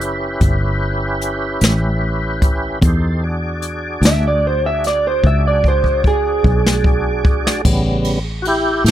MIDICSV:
0, 0, Header, 1, 5, 480
1, 0, Start_track
1, 0, Tempo, 803859
1, 1688, Time_signature, 12, 3, 24, 8
1, 5320, End_track
2, 0, Start_track
2, 0, Title_t, "Clean electric guitar"
2, 0, Program_c, 0, 27
2, 2429, Note_on_c, 0, 76, 106
2, 2535, Note_off_c, 0, 76, 0
2, 2553, Note_on_c, 0, 74, 94
2, 2657, Note_off_c, 0, 74, 0
2, 2669, Note_on_c, 0, 72, 78
2, 2775, Note_off_c, 0, 72, 0
2, 2785, Note_on_c, 0, 76, 101
2, 2893, Note_off_c, 0, 76, 0
2, 2908, Note_on_c, 0, 74, 97
2, 3015, Note_off_c, 0, 74, 0
2, 3029, Note_on_c, 0, 72, 83
2, 3135, Note_off_c, 0, 72, 0
2, 3144, Note_on_c, 0, 76, 95
2, 3253, Note_off_c, 0, 76, 0
2, 3269, Note_on_c, 0, 74, 95
2, 3376, Note_off_c, 0, 74, 0
2, 3392, Note_on_c, 0, 72, 98
2, 3613, Note_off_c, 0, 72, 0
2, 3627, Note_on_c, 0, 68, 106
2, 4554, Note_off_c, 0, 68, 0
2, 5320, End_track
3, 0, Start_track
3, 0, Title_t, "Tonewheel organ"
3, 0, Program_c, 1, 16
3, 0, Note_on_c, 1, 61, 67
3, 0, Note_on_c, 1, 64, 64
3, 0, Note_on_c, 1, 67, 62
3, 0, Note_on_c, 1, 71, 61
3, 1665, Note_off_c, 1, 61, 0
3, 1665, Note_off_c, 1, 67, 0
3, 1667, Note_off_c, 1, 64, 0
3, 1670, Note_off_c, 1, 71, 0
3, 1695, Note_on_c, 1, 69, 57
3, 1698, Note_on_c, 1, 63, 56
3, 1700, Note_on_c, 1, 67, 57
3, 1701, Note_on_c, 1, 72, 59
3, 1930, Note_on_c, 1, 62, 62
3, 1931, Note_off_c, 1, 69, 0
3, 1931, Note_on_c, 1, 68, 72
3, 1933, Note_off_c, 1, 63, 0
3, 1933, Note_on_c, 1, 74, 70
3, 1934, Note_off_c, 1, 67, 0
3, 1935, Note_off_c, 1, 72, 0
3, 1935, Note_on_c, 1, 66, 68
3, 4546, Note_off_c, 1, 62, 0
3, 4546, Note_off_c, 1, 68, 0
3, 4547, Note_off_c, 1, 74, 0
3, 4548, Note_off_c, 1, 66, 0
3, 4566, Note_on_c, 1, 49, 48
3, 4572, Note_on_c, 1, 55, 44
3, 4577, Note_on_c, 1, 59, 56
3, 4886, Note_off_c, 1, 49, 0
3, 4890, Note_off_c, 1, 55, 0
3, 4892, Note_off_c, 1, 59, 0
3, 5029, Note_on_c, 1, 66, 60
3, 5056, Note_off_c, 1, 66, 0
3, 5060, Note_on_c, 1, 64, 74
3, 5064, Note_on_c, 1, 67, 93
3, 5278, Note_off_c, 1, 64, 0
3, 5279, Note_off_c, 1, 67, 0
3, 5286, Note_on_c, 1, 64, 58
3, 5286, Note_on_c, 1, 67, 66
3, 5320, Note_off_c, 1, 64, 0
3, 5320, Note_off_c, 1, 67, 0
3, 5320, End_track
4, 0, Start_track
4, 0, Title_t, "Fingered electric bass"
4, 0, Program_c, 2, 33
4, 0, Note_on_c, 2, 30, 88
4, 224, Note_off_c, 2, 30, 0
4, 243, Note_on_c, 2, 31, 76
4, 944, Note_off_c, 2, 31, 0
4, 964, Note_on_c, 2, 33, 88
4, 1664, Note_off_c, 2, 33, 0
4, 1680, Note_on_c, 2, 40, 83
4, 2383, Note_off_c, 2, 40, 0
4, 2397, Note_on_c, 2, 38, 85
4, 3101, Note_off_c, 2, 38, 0
4, 3128, Note_on_c, 2, 37, 85
4, 3826, Note_off_c, 2, 37, 0
4, 3846, Note_on_c, 2, 35, 93
4, 4546, Note_off_c, 2, 35, 0
4, 4566, Note_on_c, 2, 33, 74
4, 5266, Note_off_c, 2, 33, 0
4, 5281, Note_on_c, 2, 45, 77
4, 5320, Note_off_c, 2, 45, 0
4, 5320, End_track
5, 0, Start_track
5, 0, Title_t, "Drums"
5, 6, Note_on_c, 9, 42, 54
5, 66, Note_off_c, 9, 42, 0
5, 243, Note_on_c, 9, 42, 70
5, 245, Note_on_c, 9, 36, 80
5, 303, Note_off_c, 9, 42, 0
5, 305, Note_off_c, 9, 36, 0
5, 725, Note_on_c, 9, 42, 62
5, 785, Note_off_c, 9, 42, 0
5, 962, Note_on_c, 9, 42, 83
5, 977, Note_on_c, 9, 38, 101
5, 1021, Note_off_c, 9, 42, 0
5, 1036, Note_off_c, 9, 38, 0
5, 1444, Note_on_c, 9, 42, 66
5, 1445, Note_on_c, 9, 36, 79
5, 1504, Note_off_c, 9, 42, 0
5, 1505, Note_off_c, 9, 36, 0
5, 1684, Note_on_c, 9, 42, 81
5, 1686, Note_on_c, 9, 36, 114
5, 1744, Note_off_c, 9, 42, 0
5, 1745, Note_off_c, 9, 36, 0
5, 2162, Note_on_c, 9, 42, 62
5, 2222, Note_off_c, 9, 42, 0
5, 2404, Note_on_c, 9, 42, 79
5, 2419, Note_on_c, 9, 38, 104
5, 2464, Note_off_c, 9, 42, 0
5, 2479, Note_off_c, 9, 38, 0
5, 2890, Note_on_c, 9, 42, 59
5, 2905, Note_on_c, 9, 38, 28
5, 2950, Note_off_c, 9, 42, 0
5, 2965, Note_off_c, 9, 38, 0
5, 3126, Note_on_c, 9, 36, 76
5, 3186, Note_off_c, 9, 36, 0
5, 3368, Note_on_c, 9, 36, 67
5, 3427, Note_off_c, 9, 36, 0
5, 3487, Note_on_c, 9, 36, 55
5, 3547, Note_off_c, 9, 36, 0
5, 3608, Note_on_c, 9, 36, 78
5, 3667, Note_off_c, 9, 36, 0
5, 3848, Note_on_c, 9, 36, 77
5, 3907, Note_off_c, 9, 36, 0
5, 3979, Note_on_c, 9, 38, 72
5, 4039, Note_off_c, 9, 38, 0
5, 4086, Note_on_c, 9, 36, 91
5, 4146, Note_off_c, 9, 36, 0
5, 4327, Note_on_c, 9, 36, 91
5, 4387, Note_off_c, 9, 36, 0
5, 4459, Note_on_c, 9, 38, 90
5, 4519, Note_off_c, 9, 38, 0
5, 4567, Note_on_c, 9, 49, 91
5, 4568, Note_on_c, 9, 36, 97
5, 4626, Note_off_c, 9, 49, 0
5, 4627, Note_off_c, 9, 36, 0
5, 4803, Note_on_c, 9, 51, 64
5, 4863, Note_off_c, 9, 51, 0
5, 5046, Note_on_c, 9, 51, 64
5, 5105, Note_off_c, 9, 51, 0
5, 5289, Note_on_c, 9, 51, 82
5, 5320, Note_off_c, 9, 51, 0
5, 5320, End_track
0, 0, End_of_file